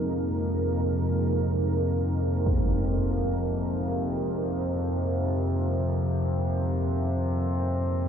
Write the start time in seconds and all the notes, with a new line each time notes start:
Already playing: F2 C3 G#3 A#3 D#4 G#4 A#4
2.46 impact